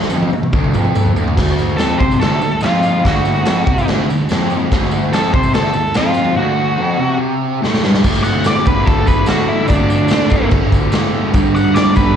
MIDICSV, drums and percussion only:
0, 0, Header, 1, 2, 480
1, 0, Start_track
1, 0, Tempo, 415512
1, 1579, Time_signature, 4, 2, 24, 8
1, 14050, End_track
2, 0, Start_track
2, 0, Title_t, "Drums"
2, 28, Note_on_c, 9, 38, 61
2, 113, Note_on_c, 9, 54, 91
2, 144, Note_off_c, 9, 38, 0
2, 144, Note_on_c, 9, 48, 69
2, 229, Note_off_c, 9, 54, 0
2, 260, Note_off_c, 9, 48, 0
2, 262, Note_on_c, 9, 48, 70
2, 349, Note_on_c, 9, 54, 28
2, 377, Note_off_c, 9, 48, 0
2, 383, Note_on_c, 9, 48, 80
2, 464, Note_off_c, 9, 54, 0
2, 498, Note_off_c, 9, 48, 0
2, 498, Note_on_c, 9, 47, 69
2, 611, Note_off_c, 9, 47, 0
2, 611, Note_on_c, 9, 47, 84
2, 611, Note_on_c, 9, 54, 27
2, 615, Note_on_c, 9, 36, 106
2, 727, Note_off_c, 9, 47, 0
2, 727, Note_off_c, 9, 54, 0
2, 730, Note_off_c, 9, 36, 0
2, 742, Note_on_c, 9, 47, 75
2, 855, Note_on_c, 9, 54, 70
2, 857, Note_off_c, 9, 47, 0
2, 862, Note_on_c, 9, 45, 93
2, 970, Note_off_c, 9, 54, 0
2, 976, Note_off_c, 9, 45, 0
2, 976, Note_on_c, 9, 45, 73
2, 1092, Note_off_c, 9, 45, 0
2, 1100, Note_on_c, 9, 54, 90
2, 1107, Note_on_c, 9, 45, 84
2, 1216, Note_off_c, 9, 54, 0
2, 1223, Note_off_c, 9, 45, 0
2, 1224, Note_on_c, 9, 43, 78
2, 1340, Note_off_c, 9, 43, 0
2, 1343, Note_on_c, 9, 43, 88
2, 1351, Note_on_c, 9, 54, 79
2, 1459, Note_off_c, 9, 43, 0
2, 1467, Note_off_c, 9, 54, 0
2, 1475, Note_on_c, 9, 43, 84
2, 1586, Note_on_c, 9, 36, 99
2, 1586, Note_on_c, 9, 49, 109
2, 1586, Note_on_c, 9, 57, 57
2, 1590, Note_off_c, 9, 43, 0
2, 1600, Note_on_c, 9, 38, 102
2, 1613, Note_on_c, 9, 54, 27
2, 1702, Note_off_c, 9, 36, 0
2, 1702, Note_off_c, 9, 49, 0
2, 1702, Note_off_c, 9, 57, 0
2, 1716, Note_off_c, 9, 38, 0
2, 1717, Note_off_c, 9, 54, 0
2, 1717, Note_on_c, 9, 54, 28
2, 1830, Note_off_c, 9, 54, 0
2, 1830, Note_on_c, 9, 54, 74
2, 1946, Note_off_c, 9, 54, 0
2, 2058, Note_on_c, 9, 57, 57
2, 2072, Note_on_c, 9, 38, 109
2, 2079, Note_on_c, 9, 54, 94
2, 2174, Note_off_c, 9, 57, 0
2, 2188, Note_off_c, 9, 38, 0
2, 2195, Note_off_c, 9, 54, 0
2, 2316, Note_on_c, 9, 36, 100
2, 2318, Note_on_c, 9, 54, 28
2, 2431, Note_off_c, 9, 36, 0
2, 2434, Note_off_c, 9, 54, 0
2, 2442, Note_on_c, 9, 54, 71
2, 2554, Note_off_c, 9, 54, 0
2, 2554, Note_on_c, 9, 54, 29
2, 2557, Note_on_c, 9, 57, 58
2, 2571, Note_on_c, 9, 38, 110
2, 2670, Note_off_c, 9, 54, 0
2, 2672, Note_off_c, 9, 57, 0
2, 2686, Note_off_c, 9, 38, 0
2, 2791, Note_on_c, 9, 54, 76
2, 2902, Note_off_c, 9, 54, 0
2, 2902, Note_on_c, 9, 54, 30
2, 3011, Note_off_c, 9, 54, 0
2, 3011, Note_on_c, 9, 54, 96
2, 3036, Note_on_c, 9, 57, 61
2, 3050, Note_on_c, 9, 38, 116
2, 3127, Note_off_c, 9, 54, 0
2, 3152, Note_off_c, 9, 57, 0
2, 3166, Note_off_c, 9, 38, 0
2, 3268, Note_on_c, 9, 54, 78
2, 3383, Note_off_c, 9, 54, 0
2, 3402, Note_on_c, 9, 54, 29
2, 3518, Note_off_c, 9, 54, 0
2, 3525, Note_on_c, 9, 36, 93
2, 3526, Note_on_c, 9, 57, 59
2, 3528, Note_on_c, 9, 54, 31
2, 3540, Note_on_c, 9, 38, 107
2, 3640, Note_off_c, 9, 36, 0
2, 3642, Note_off_c, 9, 57, 0
2, 3643, Note_off_c, 9, 54, 0
2, 3656, Note_off_c, 9, 38, 0
2, 3656, Note_on_c, 9, 54, 28
2, 3758, Note_off_c, 9, 54, 0
2, 3758, Note_on_c, 9, 54, 82
2, 3874, Note_off_c, 9, 54, 0
2, 3886, Note_on_c, 9, 54, 30
2, 3991, Note_on_c, 9, 57, 61
2, 4001, Note_off_c, 9, 54, 0
2, 4001, Note_on_c, 9, 54, 97
2, 4005, Note_on_c, 9, 38, 114
2, 4107, Note_off_c, 9, 57, 0
2, 4117, Note_off_c, 9, 54, 0
2, 4120, Note_off_c, 9, 38, 0
2, 4234, Note_on_c, 9, 54, 28
2, 4241, Note_on_c, 9, 36, 110
2, 4349, Note_off_c, 9, 54, 0
2, 4356, Note_off_c, 9, 36, 0
2, 4366, Note_on_c, 9, 54, 73
2, 4481, Note_on_c, 9, 57, 65
2, 4482, Note_off_c, 9, 54, 0
2, 4495, Note_on_c, 9, 38, 112
2, 4596, Note_off_c, 9, 57, 0
2, 4610, Note_off_c, 9, 38, 0
2, 4738, Note_on_c, 9, 54, 79
2, 4845, Note_off_c, 9, 54, 0
2, 4845, Note_on_c, 9, 54, 31
2, 4954, Note_off_c, 9, 54, 0
2, 4954, Note_on_c, 9, 54, 91
2, 4974, Note_on_c, 9, 57, 60
2, 4988, Note_on_c, 9, 38, 110
2, 5070, Note_off_c, 9, 54, 0
2, 5090, Note_off_c, 9, 57, 0
2, 5104, Note_off_c, 9, 38, 0
2, 5200, Note_on_c, 9, 54, 70
2, 5316, Note_off_c, 9, 54, 0
2, 5445, Note_on_c, 9, 54, 28
2, 5447, Note_on_c, 9, 57, 55
2, 5451, Note_on_c, 9, 36, 102
2, 5461, Note_on_c, 9, 38, 99
2, 5560, Note_off_c, 9, 54, 0
2, 5563, Note_off_c, 9, 57, 0
2, 5566, Note_off_c, 9, 36, 0
2, 5572, Note_on_c, 9, 54, 29
2, 5577, Note_off_c, 9, 38, 0
2, 5677, Note_off_c, 9, 54, 0
2, 5677, Note_on_c, 9, 54, 80
2, 5792, Note_off_c, 9, 54, 0
2, 5814, Note_on_c, 9, 54, 29
2, 5927, Note_on_c, 9, 57, 57
2, 5929, Note_off_c, 9, 54, 0
2, 5929, Note_on_c, 9, 54, 96
2, 5941, Note_on_c, 9, 38, 106
2, 6042, Note_off_c, 9, 57, 0
2, 6045, Note_off_c, 9, 54, 0
2, 6056, Note_off_c, 9, 38, 0
2, 6165, Note_on_c, 9, 36, 110
2, 6165, Note_on_c, 9, 54, 26
2, 6275, Note_off_c, 9, 54, 0
2, 6275, Note_on_c, 9, 54, 71
2, 6281, Note_off_c, 9, 36, 0
2, 6391, Note_off_c, 9, 54, 0
2, 6394, Note_on_c, 9, 54, 27
2, 6398, Note_on_c, 9, 57, 54
2, 6412, Note_on_c, 9, 38, 115
2, 6509, Note_off_c, 9, 54, 0
2, 6513, Note_off_c, 9, 57, 0
2, 6527, Note_off_c, 9, 38, 0
2, 6624, Note_on_c, 9, 54, 75
2, 6739, Note_off_c, 9, 54, 0
2, 6784, Note_on_c, 9, 54, 31
2, 6864, Note_on_c, 9, 57, 60
2, 6867, Note_off_c, 9, 54, 0
2, 6867, Note_on_c, 9, 54, 88
2, 6878, Note_on_c, 9, 38, 111
2, 6980, Note_off_c, 9, 57, 0
2, 6983, Note_off_c, 9, 54, 0
2, 6994, Note_off_c, 9, 38, 0
2, 7094, Note_on_c, 9, 54, 74
2, 7209, Note_off_c, 9, 54, 0
2, 7217, Note_on_c, 9, 54, 29
2, 7332, Note_off_c, 9, 54, 0
2, 8825, Note_on_c, 9, 38, 65
2, 8941, Note_off_c, 9, 38, 0
2, 8944, Note_on_c, 9, 38, 68
2, 9059, Note_off_c, 9, 38, 0
2, 9061, Note_on_c, 9, 38, 87
2, 9176, Note_off_c, 9, 38, 0
2, 9178, Note_on_c, 9, 38, 88
2, 9290, Note_on_c, 9, 49, 118
2, 9290, Note_on_c, 9, 54, 75
2, 9290, Note_on_c, 9, 57, 59
2, 9292, Note_on_c, 9, 36, 99
2, 9293, Note_off_c, 9, 38, 0
2, 9405, Note_off_c, 9, 49, 0
2, 9405, Note_off_c, 9, 57, 0
2, 9406, Note_off_c, 9, 54, 0
2, 9407, Note_off_c, 9, 36, 0
2, 9524, Note_on_c, 9, 54, 83
2, 9640, Note_off_c, 9, 54, 0
2, 9752, Note_on_c, 9, 54, 100
2, 9760, Note_on_c, 9, 57, 61
2, 9774, Note_on_c, 9, 38, 113
2, 9867, Note_off_c, 9, 54, 0
2, 9876, Note_off_c, 9, 57, 0
2, 9890, Note_off_c, 9, 38, 0
2, 10000, Note_on_c, 9, 54, 75
2, 10013, Note_on_c, 9, 36, 93
2, 10115, Note_off_c, 9, 54, 0
2, 10129, Note_off_c, 9, 36, 0
2, 10247, Note_on_c, 9, 57, 59
2, 10249, Note_on_c, 9, 54, 29
2, 10252, Note_on_c, 9, 36, 109
2, 10362, Note_off_c, 9, 57, 0
2, 10364, Note_off_c, 9, 54, 0
2, 10368, Note_off_c, 9, 36, 0
2, 10478, Note_on_c, 9, 54, 80
2, 10491, Note_on_c, 9, 36, 84
2, 10594, Note_off_c, 9, 54, 0
2, 10607, Note_off_c, 9, 36, 0
2, 10700, Note_on_c, 9, 54, 100
2, 10712, Note_on_c, 9, 57, 60
2, 10726, Note_on_c, 9, 38, 109
2, 10815, Note_off_c, 9, 54, 0
2, 10828, Note_off_c, 9, 57, 0
2, 10841, Note_off_c, 9, 38, 0
2, 11178, Note_on_c, 9, 54, 86
2, 11203, Note_on_c, 9, 57, 64
2, 11204, Note_on_c, 9, 36, 107
2, 11294, Note_off_c, 9, 54, 0
2, 11318, Note_off_c, 9, 57, 0
2, 11320, Note_off_c, 9, 36, 0
2, 11436, Note_on_c, 9, 54, 85
2, 11552, Note_off_c, 9, 54, 0
2, 11646, Note_on_c, 9, 54, 106
2, 11670, Note_on_c, 9, 57, 70
2, 11684, Note_on_c, 9, 38, 121
2, 11761, Note_off_c, 9, 54, 0
2, 11786, Note_off_c, 9, 57, 0
2, 11799, Note_off_c, 9, 38, 0
2, 11898, Note_on_c, 9, 54, 83
2, 11918, Note_on_c, 9, 36, 92
2, 12013, Note_off_c, 9, 54, 0
2, 12033, Note_off_c, 9, 36, 0
2, 12134, Note_on_c, 9, 54, 30
2, 12143, Note_on_c, 9, 57, 69
2, 12152, Note_on_c, 9, 36, 112
2, 12250, Note_off_c, 9, 54, 0
2, 12259, Note_off_c, 9, 57, 0
2, 12268, Note_off_c, 9, 36, 0
2, 12388, Note_on_c, 9, 36, 89
2, 12399, Note_on_c, 9, 54, 79
2, 12503, Note_off_c, 9, 36, 0
2, 12514, Note_off_c, 9, 54, 0
2, 12613, Note_on_c, 9, 54, 98
2, 12620, Note_on_c, 9, 57, 69
2, 12634, Note_on_c, 9, 38, 114
2, 12728, Note_off_c, 9, 54, 0
2, 12736, Note_off_c, 9, 57, 0
2, 12750, Note_off_c, 9, 38, 0
2, 13094, Note_on_c, 9, 57, 57
2, 13101, Note_on_c, 9, 54, 83
2, 13102, Note_on_c, 9, 36, 117
2, 13209, Note_off_c, 9, 57, 0
2, 13217, Note_off_c, 9, 54, 0
2, 13218, Note_off_c, 9, 36, 0
2, 13356, Note_on_c, 9, 54, 84
2, 13472, Note_off_c, 9, 54, 0
2, 13582, Note_on_c, 9, 54, 105
2, 13582, Note_on_c, 9, 57, 64
2, 13595, Note_on_c, 9, 38, 114
2, 13697, Note_off_c, 9, 54, 0
2, 13697, Note_off_c, 9, 57, 0
2, 13711, Note_off_c, 9, 38, 0
2, 13813, Note_on_c, 9, 54, 83
2, 13826, Note_on_c, 9, 36, 97
2, 13929, Note_off_c, 9, 54, 0
2, 13942, Note_off_c, 9, 36, 0
2, 14050, End_track
0, 0, End_of_file